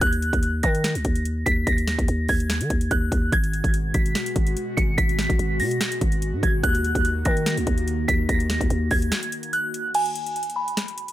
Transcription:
0.01 D#2 F#6, kick, closed hi-hat
0.13 closed hi-hat
0.22 closed hi-hat
0.33 D#2, kick, closed hi-hat
0.43 closed hi-hat
0.63 D#3 A#6, kick, closed hi-hat
0.75 closed hi-hat
0.84 snare, closed hi-hat
0.95 C#2, closed hi-hat
1.05 D#2, kick, closed hi-hat
1.15 closed hi-hat
1.25 closed hi-hat
1.46 D#2 B6, kick, closed hi-hat
1.67 D#2 A#6, kick, closed hi-hat
1.78 closed hi-hat
1.88 snare, closed hi-hat
1.99 D#2, kick, closed hi-hat
2.08 D#2, closed hi-hat
2.29 D#2 G#6, kick, open hi-hat
2.40 closed hi-hat
2.50 snare, closed hi-hat
2.61 D#3, closed hi-hat
2.70 D#2, kick, closed hi-hat
2.81 closed hi-hat
2.91 D#2 F#6, kick, closed hi-hat
3.12 D#2, kick, closed hi-hat
3.32 G#1 B2 G#3 F#4 G#6, kick, closed hi-hat
3.44 closed hi-hat
3.53 closed hi-hat
3.64 G#1, kick, closed hi-hat
3.74 closed hi-hat
3.94 G#1 B6, kick, closed hi-hat
4.06 closed hi-hat
4.15 snare, closed hi-hat
4.26 closed hi-hat
4.36 G#1, kick, closed hi-hat
4.47 closed hi-hat
4.57 closed hi-hat
4.77 G#1 C#7, kick, closed hi-hat
4.98 G#1 B6, kick, closed hi-hat
5.09 closed hi-hat
5.19 snare, closed hi-hat
5.30 G#1, kick, closed hi-hat
5.39 G#1, closed hi-hat
5.60 B2 A#6, open hi-hat
5.71 closed hi-hat
5.81 snare, closed hi-hat
5.92 closed hi-hat
6.01 G#1, kick, closed hi-hat
6.12 closed hi-hat
6.22 closed hi-hat
6.33 G#2
6.43 G#1 G#6, kick, closed hi-hat
6.63 D#2 D#3 A#3 F#6, kick, closed hi-hat
6.75 closed hi-hat
6.84 closed hi-hat
6.95 D#2, kick, closed hi-hat
7.05 closed hi-hat
7.25 D#3 A#6, kick, closed hi-hat
7.37 closed hi-hat
7.46 snare, closed hi-hat
7.57 C#2, closed hi-hat
7.67 D#2, kick, closed hi-hat
7.78 closed hi-hat
7.88 closed hi-hat
8.08 D#2 B6, kick, closed hi-hat
8.29 D#2 A#6, kick, closed hi-hat
8.40 closed hi-hat
8.50 snare, closed hi-hat
8.61 D#2, kick, closed hi-hat
8.70 D#2, closed hi-hat
8.91 D#2 G#6, kick, open hi-hat
9.02 closed hi-hat
9.12 snare, closed hi-hat
9.23 closed hi-hat
9.32 closed hi-hat
9.43 closed hi-hat
9.53 F#6, closed hi-hat
9.74 closed hi-hat
9.94 G#5, closed hi-hat, crash
10.06 closed hi-hat
10.16 closed hi-hat
10.27 closed hi-hat
10.36 closed hi-hat
10.43 closed hi-hat
10.50 closed hi-hat
10.56 B5
10.68 closed hi-hat
10.77 snare, closed hi-hat
10.88 closed hi-hat
10.98 closed hi-hat
11.08 closed hi-hat

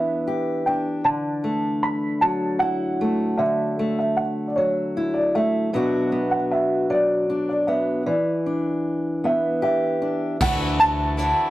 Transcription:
Already playing: E3 B3 D4 E5
0.28 G4
0.66 D4 G5
1.04 D3 A5
1.44 A3
1.83 B5
2.21 F#3 A5
2.59 E4 F#5
3.01 A3
3.38 D3 E5
3.79 A3
3.99 E5
4.17 F#5
4.48 D5
4.56 F#3 C#5
4.97 E4
5.14 D5
5.35 A3 E5
5.73 B2 F#3 B3 D4 F#4
6.12 B3
6.31 F#5
6.51 E5
6.90 F#3 D5
7.30 D4
7.49 D5
7.67 B3 E5
8.06 E3 D5
8.46 D4
9.24 B3 E5
9.62 G4 E5
10.02 D4
10.41 D2 D3 E3 A3 D4 F#4 F#5, kick, crash
10.80 A5, closed hi-hat
11.17 E3 A3 D4 F#4, closed hi-hat

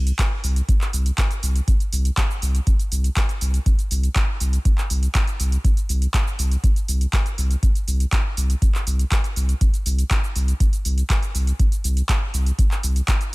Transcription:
Already playing: C2
0.07 closed hi-hat, shaker
0.19 kick, clap, closed hi-hat, shaker
0.44 C2, open hi-hat, shaker
0.56 closed hi-hat, shaker
0.69 kick, closed hi-hat, shaker
0.81 clap, shaker
0.93 C2, open hi-hat, shaker
1.06 closed hi-hat, shaker
1.18 kick, clap, closed hi-hat, shaker
1.31 closed hi-hat, shaker
1.43 C2, open hi-hat, shaker
1.56 closed hi-hat, shaker
1.68 kick, closed hi-hat, shaker
1.80 closed hi-hat, shaker
1.93 C2, open hi-hat, shaker
2.05 closed hi-hat, shaker
2.17 kick, clap, closed hi-hat, shaker
2.31 shaker
2.42 C2, open hi-hat, shaker
2.55 closed hi-hat, shaker
2.67 kick, closed hi-hat, shaker
2.79 closed hi-hat, shaker
2.92 C2, open hi-hat, shaker
3.04 closed hi-hat, shaker
3.17 kick, clap, closed hi-hat, shaker
3.29 closed hi-hat, shaker
3.41 C2, open hi-hat, shaker
3.54 closed hi-hat, shaker
3.66 kick, closed hi-hat, shaker
3.79 closed hi-hat, shaker
3.91 C2, open hi-hat, shaker
4.03 closed hi-hat, shaker
4.16 kick, clap, closed hi-hat, shaker
4.40 C2, open hi-hat, shaker
4.53 closed hi-hat, shaker
4.65 kick, closed hi-hat, shaker
4.78 clap, shaker
4.90 C2, open hi-hat, shaker
5.03 closed hi-hat, shaker
5.15 kick, clap, closed hi-hat, shaker
5.27 closed hi-hat, shaker
5.40 C2, open hi-hat, shaker
5.52 closed hi-hat, shaker
5.64 kick, closed hi-hat, shaker
5.77 closed hi-hat, shaker
5.89 C2, open hi-hat, shaker
6.02 closed hi-hat, shaker
6.14 kick, clap, closed hi-hat, shaker
6.27 shaker
6.39 C2, open hi-hat, shaker
6.51 closed hi-hat, shaker
6.64 kick, closed hi-hat, shaker
6.76 closed hi-hat, shaker
6.88 C2, open hi-hat, shaker
7.01 closed hi-hat, shaker
7.13 kick, clap, closed hi-hat, shaker
7.26 closed hi-hat, shaker
7.38 C2, open hi-hat, shaker
7.51 closed hi-hat, shaker
7.63 kick, closed hi-hat, shaker
7.75 closed hi-hat, shaker
7.88 C2, open hi-hat, shaker
8.00 closed hi-hat, shaker
8.12 kick, clap, closed hi-hat, shaker
8.37 C2, open hi-hat, shaker
8.50 closed hi-hat, shaker
8.62 kick, closed hi-hat, shaker
8.75 clap, shaker
8.87 C2, open hi-hat, shaker
8.99 closed hi-hat, shaker
9.12 kick, clap, closed hi-hat, shaker
9.24 closed hi-hat, shaker
9.36 C2, open hi-hat, shaker
9.49 closed hi-hat, shaker
9.61 kick, closed hi-hat, shaker
9.74 closed hi-hat, shaker
9.86 C2, open hi-hat, shaker
9.99 closed hi-hat, shaker
10.11 kick, clap, closed hi-hat, shaker
10.24 shaker
10.36 C2, open hi-hat, shaker
10.48 closed hi-hat, shaker
10.60 kick, closed hi-hat, shaker
10.73 closed hi-hat, shaker
10.85 C2, open hi-hat, shaker
10.98 closed hi-hat, shaker
11.10 kick, clap, closed hi-hat, shaker
11.23 closed hi-hat, shaker
11.35 C2, open hi-hat, shaker
11.47 closed hi-hat, shaker
11.59 kick, closed hi-hat, shaker
11.72 closed hi-hat, shaker
11.84 C2, open hi-hat, shaker
11.97 closed hi-hat, shaker
12.09 kick, clap, closed hi-hat, shaker
12.34 C2, open hi-hat, shaker
12.46 closed hi-hat, shaker
12.59 kick, closed hi-hat, shaker
12.71 clap, shaker
12.83 C2, open hi-hat, shaker
12.96 closed hi-hat, shaker
13.08 kick, clap, closed hi-hat, shaker
13.21 closed hi-hat, shaker

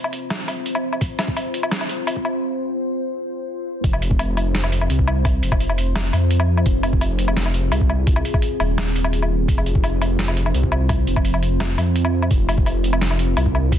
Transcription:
Already playing: C4 F4 C5
0.04 low woodblock
0.13 closed hi-hat
0.30 snare, closed hi-hat, low woodblock
0.48 closed hi-hat, low woodblock
0.66 closed hi-hat
0.75 low woodblock
0.93 low woodblock
1.01 kick, closed hi-hat
1.19 snare, closed hi-hat, low woodblock
1.28 kick
1.37 closed hi-hat, low woodblock
1.54 closed hi-hat
1.63 low woodblock
1.71 snare, open hi-hat
1.81 low woodblock
1.89 closed hi-hat
2.07 closed hi-hat, low woodblock
2.16 kick
2.25 low woodblock
3.84 F1 C4 F4 C5, kick, closed hi-hat
3.93 low woodblock
4.02 closed hi-hat
4.11 kick
4.19 closed hi-hat, low woodblock
4.37 closed hi-hat, low woodblock
4.55 snare, open hi-hat
4.64 low woodblock
4.72 closed hi-hat
4.81 low woodblock
4.90 C2, closed hi-hat
4.99 kick
5.08 low woodblock
5.25 kick, closed hi-hat, low woodblock
5.43 F1, closed hi-hat
5.52 kick, low woodblock
5.60 closed hi-hat
5.69 low woodblock
5.78 closed hi-hat
5.96 snare, closed hi-hat, low woodblock
6.13 F2, closed hi-hat, low woodblock
6.31 closed hi-hat
6.40 low woodblock
6.57 low woodblock
6.66 F1 G#4, kick, closed hi-hat
6.83 closed hi-hat, low woodblock
6.93 kick
7.01 closed hi-hat, low woodblock
7.19 closed hi-hat
7.28 low woodblock
7.37 snare, open hi-hat
7.46 low woodblock
7.54 closed hi-hat
7.72 C2, closed hi-hat, low woodblock
7.81 kick
7.90 low woodblock
8.07 kick, closed hi-hat
8.16 low woodblock
8.25 closed hi-hat
8.34 kick, low woodblock
8.42 closed hi-hat
8.60 D#1, open hi-hat, low woodblock
8.78 snare, closed hi-hat, low woodblock
8.96 closed hi-hat
9.04 low woodblock
9.13 closed hi-hat
9.22 low woodblock
9.48 F1 C5, kick, closed hi-hat
9.58 low woodblock
9.66 closed hi-hat
9.75 kick
9.84 closed hi-hat, low woodblock
10.02 closed hi-hat, low woodblock
10.19 snare, open hi-hat
10.28 low woodblock
10.37 closed hi-hat
10.46 low woodblock
10.54 C2, closed hi-hat
10.63 kick
10.72 low woodblock
10.89 kick, closed hi-hat, low woodblock
11.07 F1, closed hi-hat
11.16 kick, low woodblock
11.25 closed hi-hat
11.34 low woodblock
11.43 closed hi-hat
11.60 snare, closed hi-hat, low woodblock
11.78 F2, closed hi-hat, low woodblock
11.96 closed hi-hat
12.05 low woodblock
12.22 low woodblock
12.31 F1 A#4, kick, closed hi-hat
12.49 closed hi-hat, low woodblock
12.58 kick
12.66 closed hi-hat, low woodblock
12.84 closed hi-hat
12.93 low woodblock
13.01 snare, open hi-hat
13.11 low woodblock
13.19 closed hi-hat
13.37 C2, closed hi-hat, low woodblock
13.46 kick
13.55 low woodblock
13.72 kick, closed hi-hat

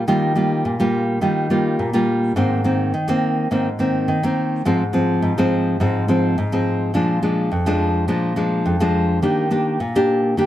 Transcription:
0.08 D#3 G3 A#3 F4
0.35 G3 A#3 F4
0.65 A#2
0.80 G3 A#3 F4
1.21 D#3 G3 A#3 F4
1.50 G3 A#3 F4
1.79 A#2
1.93 G3 A#3 F4
2.36 G#2 D#3 A#3 C4
2.64 D#3 A#3 C4
2.94 D#3
3.08 D#3 A#3 C4
3.51 G#2 D#3 A#3 C4
3.79 D#3 A#3 C4
4.08 D#3
4.23 D#3 A#3 C4
4.65 G#2 F3 G#3 C4
4.93 F3 G#3 C4
5.22 G#2
5.38 F3 G#3 C4
5.80 G#2 F3 G#3 C4
6.08 F3 G#3 C4
6.38 G#2
6.52 F3 G#3 C4
6.94 A#2 F3 G#3 D4
7.23 F3 G#3 D4
7.52 F2
7.66 F3 G#3 D4
8.08 A#2 F3 G#3 D4
8.36 F3 G#3 D4
8.66 F2
8.80 F3 G#3 D4
9.22 D#3 A#3 D4 G4
9.51 A#3 D4 G4
9.80 A#2
9.95 A#3 D4 G4
10.37 D#3 A#3 D4 G4

